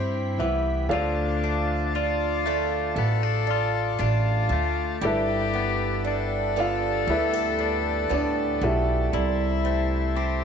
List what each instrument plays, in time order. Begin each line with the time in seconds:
Already playing: upright bass G2, steel-string acoustic guitar G3 E4 G4, upright piano C4 C5, clean electric guitar C4, cello E4, harmonium G4 B5
0.38 upright bass C2, clean electric guitar E3, steel-string acoustic guitar B3, upright piano E4 E5
0.89 upright bass D2, clean electric guitar D3, steel-string acoustic guitar F3, cello D4, harmonium F4 D5 A5, upright piano F4 A4 D5 F5
0.93 clean electric guitar F4
1.44 steel-string acoustic guitar A3, clean electric guitar D4
1.94 steel-string acoustic guitar D4, cello F4, clean electric guitar F4
2.46 steel-string acoustic guitar A3 D4 A4, clean electric guitar A3
2.95 upright bass A1, clean electric guitar B3, cello A4, steel-string acoustic guitar A4
3.23 clean electric guitar D4
3.47 steel-string acoustic guitar D4, clean electric guitar F4
3.98 upright bass A1, steel-string acoustic guitar A3 D4 A4, clean electric guitar D4, cello F4
4.49 upright bass D2, steel-string acoustic guitar A3, clean electric guitar A3
5.01 upright bass G1, clean electric guitar G2 G4, steel-string acoustic guitar G3, cello G4, harmonium G4 B4, upright piano A4 E5
5.05 upright piano E4 B4
5.54 steel-string acoustic guitar B3, clean electric guitar B3
6.04 steel-string acoustic guitar D4, clean electric guitar D4, cello A4
6.56 clean electric guitar D3, steel-string acoustic guitar B3 D4 A4, upright piano F4 F5
7.07 upright bass D2, clean electric guitar B3, upright piano E4 A4 B4 E5, steel-string acoustic guitar G4
7.33 steel-string acoustic guitar A4
7.59 steel-string acoustic guitar D4, clean electric guitar D4
8.09 upright bass D2, clean electric guitar A2, steel-string acoustic guitar B3 D4 A4, upright piano D4 D5
8.61 upright bass B1, clean electric guitar B2, steel-string acoustic guitar B3, upright piano E4 G4 A4 E5
9.13 upright bass C2, clean electric guitar C3 E4, steel-string acoustic guitar G3, harmonium E4 C5, cello E4
9.65 clean electric guitar A3, steel-string acoustic guitar C4
10.16 clean electric guitar C4, steel-string acoustic guitar E4, cello G4